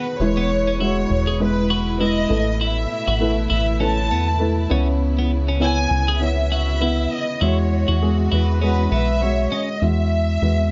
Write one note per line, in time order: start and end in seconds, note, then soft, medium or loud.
0.00 0.17 D#3 medium
0.00 0.16 B3 medium
0.00 0.22 B3 medium
0.00 0.18 F#4 medium
0.00 0.22 F#4 medium
0.00 0.22 G#4 medium
0.00 0.14 A4 medium
0.00 0.21 B4 medium
0.00 0.22 D5 medium
0.00 0.22 D#5 medium
0.19 1.06 E1 medium
0.19 4.67 B2 medium
0.19 1.07 E3 medium
0.19 2.28 G#3 medium
0.19 0.74 G#3 medium
0.19 7.38 E4 medium
0.19 0.74 E4 medium
0.19 0.74 B4 medium
0.19 0.80 C#5 medium
0.37 0.50 B3 medium
0.67 0.80 C#4 medium
0.80 1.33 G#3 medium
0.80 1.34 E4 medium
0.80 0.96 E4 medium
0.80 1.34 F#4 medium
0.80 1.37 C#5 medium
1.10 2.26 E1 loud
1.27 1.40 G#4 medium
1.40 1.94 G#3 medium
1.40 1.94 E4 medium
1.40 1.94 B4 medium
1.40 2.01 B4 medium
1.70 1.99 F#4 medium
1.99 2.30 G#3 medium
1.99 2.28 E4 medium
1.99 2.45 E4 medium
1.99 2.29 B4 medium
1.99 2.57 D#5 medium
2.29 2.87 A1 loud
2.29 3.16 A2 medium
2.29 3.10 A3 medium
2.29 4.68 A3 medium
2.29 3.10 E4 medium
2.29 3.11 B4 medium
2.61 2.77 E4 medium
2.61 3.51 E5 medium
3.07 3.48 A1 loud
3.07 3.36 F#4 medium
3.20 3.74 A3 medium
3.20 3.74 E4 medium
3.20 3.75 B4 medium
3.50 4.13 A1 loud
3.50 3.66 E4 medium
3.50 3.79 E5 medium
3.80 4.34 A3 medium
3.80 4.09 C#4 medium
3.80 4.34 E4 medium
3.80 4.35 B4 medium
3.80 4.67 A5 medium
4.11 4.67 E2 medium
4.11 4.27 B3 medium
4.39 4.70 A3 medium
4.39 4.69 E4 medium
4.39 4.71 B4 medium
4.70 5.87 C#2 loud
4.70 5.57 C#3 medium
4.70 7.39 C#3 medium
4.70 5.51 B3 medium
4.70 7.39 B3 medium
4.70 4.87 C#4 medium
4.70 5.51 E4 medium
4.70 5.52 C#5 medium
5.19 5.31 B3 medium
5.48 5.61 C#4 medium
5.60 6.14 B3 medium
5.60 6.14 E4 medium
5.60 5.78 E4 medium
5.60 6.15 C#5 medium
5.60 6.18 G#5 loud
5.91 7.07 C#2 loud
6.08 6.21 G#4 medium
6.20 6.74 B3 medium
6.20 6.75 E4 medium
6.20 6.75 C#5 medium
6.20 7.12 E5 loud
6.52 6.80 F#4 medium
6.81 7.35 B3 medium
6.81 7.35 E4 medium
6.81 7.26 E4 medium
6.81 7.35 E5 medium
7.13 7.42 D#5 medium
7.41 7.85 E2 medium
7.41 8.28 E3 medium
7.41 9.80 E3 medium
7.41 7.95 G#3 medium
7.41 9.79 G#3 medium
7.41 7.57 E4 medium
7.41 7.95 F#4 medium
7.41 9.80 F#4 medium
7.41 8.03 C#5 medium
7.41 7.95 E5 medium
7.88 8.29 E2 medium
7.88 8.17 F#4 medium
8.01 8.55 G#3 medium
8.01 8.55 F#4 medium
8.01 8.56 G#4 medium
8.32 8.88 E2 loud
8.32 8.48 E4 medium
8.32 8.60 B4 medium
8.61 9.15 G#3 medium
8.61 8.90 C#4 medium
8.61 9.16 F#4 medium
8.61 9.16 G#4 medium
8.61 8.91 B4 medium
8.92 9.48 B1 medium
8.92 9.08 B3 medium
8.92 9.20 B4 medium
8.92 9.49 E5 loud
9.21 9.75 G#3 medium
9.21 9.76 F#4 medium
9.21 9.52 C#5 medium
9.21 9.76 E5 medium
9.52 9.68 C#4 medium
9.52 9.82 D#5 medium
9.81 10.38 E2 medium
9.81 10.68 E3 soft
9.81 10.35 G#3 medium
9.81 10.36 F#4 medium
9.81 10.71 E5 loud
9.81 10.36 E5 medium
10.41 10.71 E2 medium
10.41 10.71 G#3 medium
10.41 10.71 F#4 medium
10.41 10.71 B4 medium